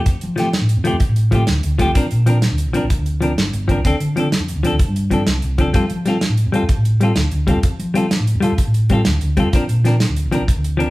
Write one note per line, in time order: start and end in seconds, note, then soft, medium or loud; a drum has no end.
0.06 0.13 F2 medium
0.06 kick medium
0.06 closed hi-hat medium
0.21 0.59 F3 medium
0.21 closed hi-hat soft
0.36 0.46 F3 medium
0.36 0.47 A3 medium
0.36 0.48 C4 medium
0.36 0.48 G4 medium
0.36 snare soft
0.36 closed hi-hat soft
0.53 snare medium
0.53 closed hi-hat medium
0.61 0.76 A2 medium
0.69 closed hi-hat soft
0.77 0.84 F2 medium
0.84 0.94 F3 medium
0.84 0.95 A3 medium
0.84 0.95 C4 medium
0.84 0.96 G4 medium
0.84 closed hi-hat soft
0.93 1.00 F2 medium
1.00 kick medium
1.00 closed hi-hat medium
1.09 1.45 A2 medium
1.16 closed hi-hat soft
1.31 1.41 F3 medium
1.31 1.42 A3 medium
1.31 1.43 C4 medium
1.31 1.43 G4 medium
1.31 kick soft
1.31 closed hi-hat soft
1.47 1.63 D2 medium
1.47 snare medium
1.47 closed hi-hat medium
1.63 1.86 D2 medium
1.63 closed hi-hat soft
1.79 1.89 F3 medium
1.79 1.89 A3 medium
1.79 1.90 C4 medium
1.79 1.90 G4 medium
1.79 kick medium
1.79 closed hi-hat soft
1.89 1.95 B1 medium
1.95 2.03 A#1 loud
1.95 2.05 F3 medium
1.95 2.05 C4 medium
1.95 2.06 D4 medium
1.95 2.06 A#4 medium
1.95 kick medium
1.95 closed hi-hat medium
2.11 2.47 A#2 medium
2.11 closed hi-hat soft
2.26 2.36 F3 medium
2.26 2.37 C4 medium
2.26 2.37 D4 medium
2.26 2.38 A#4 medium
2.26 closed hi-hat soft
2.42 snare medium
2.42 closed hi-hat medium
2.51 2.66 D2 medium
2.58 closed hi-hat soft
2.68 2.75 A#1 medium
2.73 2.84 F3 medium
2.73 2.84 C4 medium
2.73 2.85 D4 medium
2.73 2.85 A#4 medium
2.73 closed hi-hat soft
2.83 2.90 A#1 medium
2.90 kick medium
2.90 closed hi-hat medium
2.99 3.34 D2 medium
3.06 closed hi-hat soft
3.21 3.31 F3 medium
3.21 3.32 C4 medium
3.21 3.32 D4 medium
3.21 3.33 A#4 medium
3.21 closed hi-hat soft
3.37 3.52 G1 medium
3.37 snare medium
3.37 closed hi-hat medium
3.53 3.75 G1 medium
3.53 closed hi-hat soft
3.68 3.78 F3 medium
3.68 3.79 C4 medium
3.68 3.79 D4 medium
3.68 3.80 A#4 medium
3.68 kick medium
3.68 closed hi-hat soft
3.77 3.84 C2 medium
3.84 3.92 D2 medium
3.84 3.95 C4 medium
3.84 3.95 D4 medium
3.84 3.96 A4 medium
3.84 muted clean electric guitar stroke medium
3.84 kick medium
3.84 closed hi-hat medium
4.00 4.36 D3 medium
4.00 closed hi-hat soft
4.16 4.26 F3 medium
4.16 4.26 C4 medium
4.16 4.27 D4 medium
4.16 4.28 A4 medium
4.16 closed hi-hat soft
4.32 snare medium
4.32 closed hi-hat medium
4.40 4.54 F2 medium
4.48 closed hi-hat soft
4.56 4.63 D2 medium
4.63 4.73 F3 medium
4.63 4.74 C4 medium
4.63 4.74 D4 medium
4.63 4.75 A4 medium
4.63 closed hi-hat soft
4.72 4.79 D2 medium
4.79 kick medium
4.79 closed hi-hat medium
4.88 5.24 G2 medium
4.96 closed hi-hat soft
5.11 5.20 F3 medium
5.11 5.21 C4 medium
5.11 5.22 D4 medium
5.11 5.22 A4 medium
5.11 kick soft
5.11 closed hi-hat soft
5.27 5.41 C2 loud
5.27 snare medium
5.27 closed hi-hat medium
5.42 5.65 C2 medium
5.42 closed hi-hat soft
5.58 5.68 F3 medium
5.58 5.69 C4 medium
5.58 5.69 D4 medium
5.58 5.70 A4 medium
5.58 kick medium
5.58 closed hi-hat soft
5.67 5.74 D2 medium
5.73 5.82 F2 medium
5.73 5.83 G3 medium
5.73 5.84 C4 medium
5.73 5.84 F4 medium
5.73 5.85 A4 medium
5.73 kick medium
5.73 closed hi-hat medium
5.90 6.26 F3 medium
5.90 closed hi-hat soft
6.06 6.15 G3 soft
6.06 6.16 C4 soft
6.06 6.17 F4 medium
6.06 snare soft
6.06 closed hi-hat soft
6.10 6.17 A4 medium
6.21 snare medium
6.21 closed hi-hat medium
6.30 6.44 A2 medium
6.37 closed hi-hat soft
6.46 6.53 F2 medium
6.52 6.62 G3 medium
6.52 6.63 C4 medium
6.52 6.64 F4 medium
6.52 6.64 A4 medium
6.52 closed hi-hat soft
6.63 6.69 F2 medium
6.69 kick medium
6.69 closed hi-hat medium
6.78 7.13 A2 medium
6.85 closed hi-hat soft
7.01 7.10 G3 medium
7.01 7.11 C4 medium
7.01 7.12 F4 medium
7.01 7.12 A4 medium
7.01 closed hi-hat soft
7.16 7.31 D2 medium
7.16 snare medium
7.16 closed hi-hat medium
7.31 7.54 D2 medium
7.31 closed hi-hat soft
7.47 7.57 G3 medium
7.47 7.58 C4 medium
7.47 7.58 F4 medium
7.47 7.59 A4 medium
7.47 kick medium
7.47 closed hi-hat soft
7.56 7.63 F2 medium
7.63 7.71 F2 medium
7.63 kick medium
7.63 closed hi-hat medium
7.79 8.15 F3 medium
7.79 closed hi-hat soft
7.94 8.04 G3 medium
7.94 8.05 C4 medium
7.94 8.05 F4 medium
7.94 8.06 A4 medium
7.94 closed hi-hat soft
8.11 snare medium
8.11 closed hi-hat medium
8.20 8.34 A2 medium
8.27 closed hi-hat soft
8.35 8.42 F2 medium
8.40 8.51 G3 medium
8.40 8.52 F4 medium
8.40 8.53 A4 medium
8.40 muted clean electric guitar stroke medium
8.40 closed hi-hat soft
8.52 8.58 F2 medium
8.58 kick medium
8.58 closed hi-hat medium
8.67 9.03 A2 medium
8.74 closed hi-hat soft
8.89 9.00 G3 medium
8.89 9.00 C4 medium
8.89 9.01 F4 medium
8.89 kick medium
8.89 closed hi-hat soft
8.94 9.01 A4 medium
9.05 9.20 D2 loud
9.05 snare medium
9.05 closed hi-hat medium
9.21 9.44 D2 medium
9.21 closed hi-hat soft
9.37 9.47 G3 medium
9.37 9.47 C4 medium
9.37 9.48 F4 medium
9.37 9.48 A4 medium
9.37 kick medium
9.37 closed hi-hat soft
9.47 9.53 F2 medium
9.53 9.61 A#1 medium
9.53 9.63 F3 medium
9.53 9.63 C4 medium
9.53 9.64 D4 medium
9.53 9.64 A#4 medium
9.53 kick medium
9.53 closed hi-hat medium
9.69 10.05 A#2 medium
9.69 closed hi-hat soft
9.85 9.94 F3 medium
9.85 9.95 C4 medium
9.85 9.95 D4 medium
9.85 9.96 A#4 medium
9.85 snare soft
9.85 closed hi-hat soft
10.00 snare medium
10.00 closed hi-hat medium
10.09 10.23 D2 medium
10.16 closed hi-hat medium
10.25 10.32 A#1 medium
10.32 10.41 F3 medium
10.32 10.42 C4 medium
10.32 10.42 D4 medium
10.32 10.43 A#4 medium
10.32 closed hi-hat soft
10.40 10.47 A#1 medium
10.48 kick medium
10.48 closed hi-hat medium
10.56 10.90 D2 medium
10.64 closed hi-hat soft
10.77 10.88 F3 medium
10.77 10.89 C4 medium
10.77 10.89 D4 medium
10.77 10.89 A#4 medium
10.77 closed hi-hat soft